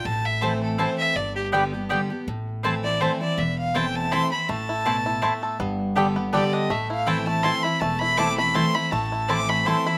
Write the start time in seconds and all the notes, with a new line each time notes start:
0.05 A1 A2 A5
0.25 E5
0.41 E3 A3 C4 E4 C5 A5
0.63 A4
0.78 E3 A3 C4 E4 C5 A5
0.98 E5
1.16 G1 G2 D5
1.36 G4
1.52 D3 G3 B3 G4 D5 G5
1.73 B3 G4
1.89 D3 G3 B3 G4 D5 G5
2.10 B3 G4
2.27 A1 A2
2.63 E3 A3 C4 E4 C5 A5
2.84 C4 E4 D5
3.00 E3 A3 C4 E4 C5 A5
3.21 C4 E4 D5
3.38 E1 E2 E5
3.58 F5
3.74 E3 A3 C4 E4 C5 G5 A5
3.95 A5
4.11 E3 A3 C4 E4 C5 A5 C6
4.31 E4 B5
4.49 A1 A2 A3 A5
4.69 E4
4.85 B2 A3 C4 E4 C5 A5
5.06 E4
5.22 A2 A3 C4 E4 C5 A5
5.43 A4
5.59 G1 G2 B3
5.96 D3 G3 B3 G4 A4 D5 G5
6.16 B3 G4
6.33 D3 G3 B3 G4 A4 D5 G5
6.53 D4 D#5
6.70 A1 A2 A3 E5
6.90 E4 F5
7.06 E3 A3 C4 E4 C5 G5 A5
7.26 A3 C4 E4 A5
7.43 E3 A3 C4 E4 C5 A5 C6
7.63 C4 E4 B5
7.80 E1 E2 A3 A5
8.00 E4 B5
8.17 E3 A3 C4 E4 C5 A5 D6
8.38 A3 C4 E4 B5
8.54 E3 A3 C4 E4 C5 A5 C6
8.75 E4 B5
8.91 A1 A2 A3 A5
9.12 E4
9.28 E3 A3 C4 E4 A4 C5 A5 D6
9.49 A3 B5
9.65 E3 A3 C4 E4 A4 C5 A5 C6
9.86 C4 E4 B5